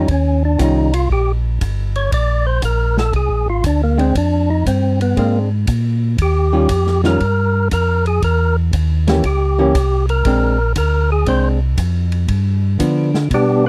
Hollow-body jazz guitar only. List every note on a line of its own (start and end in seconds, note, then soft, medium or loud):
0.58 0.89 D#3 medium
0.58 0.90 G3 medium
0.58 0.90 C#4 medium
0.58 0.90 F4 medium
3.98 4.13 G#3 medium
3.98 4.13 C4 medium
3.98 4.13 D4 medium
5.17 5.48 G#3 medium
5.17 5.48 C4 medium
5.17 5.48 D4 medium
6.52 6.67 D#3 medium
6.52 6.68 G3 medium
6.52 6.68 C#4 medium
6.52 6.68 F4 medium
7.04 7.19 D#3 medium
7.04 7.19 G3 medium
7.04 7.19 C#4 medium
7.04 7.19 F4 medium
9.07 9.22 E3 medium
9.07 9.22 A#3 medium
9.07 9.22 C#4 medium
9.07 9.23 G4 medium
9.58 9.73 E3 medium
9.58 9.73 A#3 medium
9.58 9.73 C#4 medium
9.58 9.74 G4 medium
10.26 10.56 G#3 medium
10.26 10.57 C4 medium
10.26 10.57 D4 medium
11.27 11.58 G#3 medium
11.27 11.58 C4 medium
11.27 11.58 D4 medium
12.79 13.10 F3 medium
12.79 13.10 B3 medium
12.79 13.10 D4 medium